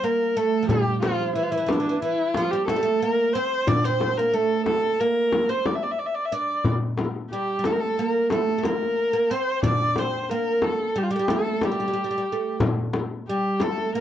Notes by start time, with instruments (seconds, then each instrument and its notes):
0.04 oud A#3, kamancheh A#4
0.36 oud A3, kamancheh A4
0.63 oud F3
0.69 oud G3, kamancheh G4, darbuka dum, frame drum
1.02 oud F3, kamancheh F4, darbuka tek, frame drum
1.35 oud E3, kamancheh E4, darbuka ka
1.43 kamancheh F4
1.51 oud E3, kamancheh E4
1.58 oud E3
1.66 oud E3, kamancheh D4, darbuka tek, frame drum
1.73 oud E3
1.80 oud E3
1.85 darbuka ka
1.89 oud E3
2.02 oud E3, kamancheh E4, darbuka ka
2.34 oud F3, kamancheh F4, darbuka tek, frame drum
2.51 oud G3, kamancheh G4
2.67 oud A3, kamancheh A4, darbuka tek, frame drum
2.76 oud G3
2.83 oud A3
3.00 oud A#3, kamancheh A#4
3.33 oud C4, kamancheh C5
3.67 oud D4, kamancheh D5, frame drum, darbuka dum
3.85 oud C4, kamancheh C5
4.00 darbuka tek, frame drum
4.17 oud A#3, kamancheh A#4
4.34 oud A3, kamancheh A4, darbuka ka
4.66 kamancheh A4, darbuka tek, frame drum
4.83 darbuka ka
5.00 oud A#3, kamancheh A#4
5.32 darbuka tek, frame drum
5.49 oud C4, kamancheh C5
5.66 kamancheh D5, darbuka tek, frame drum
5.75 kamancheh E5
5.83 kamancheh D5
5.91 kamancheh E5
5.99 kamancheh D5
6.06 kamancheh E5
6.15 kamancheh D5
6.25 kamancheh E5
6.32 oud D4, kamancheh D5, darbuka ka
6.65 darbuka dum, frame drum
6.98 darbuka tek, frame drum
7.31 oud G3, kamancheh G4, darbuka ka
7.59 oud G3
7.64 oud A3, kamancheh A4, darbuka tek, frame drum
7.72 kamancheh A#4
7.80 kamancheh A4
7.97 oud A#3, kamancheh A#4, darbuka ka
8.30 oud A3, kamancheh A4, darbuka tek, frame drum
8.58 oud A3
8.63 oud A#3, kamancheh A#4, darbuka tek, frame drum
9.13 oud A#3
9.31 oud C4, kamancheh C5
9.63 oud D4, kamancheh D5, darbuka dum, frame drum
9.96 oud C4, kamancheh C5, darbuka tek, frame drum
10.23 kamancheh C5
10.29 oud A#3, kamancheh A#4, darbuka ka
10.62 kamancheh A4, darbuka tek, frame drum
10.95 oud G3, kamancheh G4, darbuka ka
11.03 kamancheh F4
11.11 oud G3, kamancheh G4
11.16 oud G3 A3
11.28 oud A3, kamancheh A4, darbuka tek, frame drum
11.61 oud G3, kamancheh G4, darbuka tek, frame drum
11.72 oud G3
11.80 oud G3
11.88 oud G3
11.93 oud G3
12.04 oud G3
12.11 oud G3
12.18 oud G3
12.32 oud A3
12.60 darbuka dum, frame drum
12.93 darbuka tek, frame drum
13.27 oud G3, kamancheh G4, darbuka ka
13.60 oud A3, kamancheh A4, darbuka tek, frame drum
13.94 oud A#3, kamancheh A#4, darbuka ka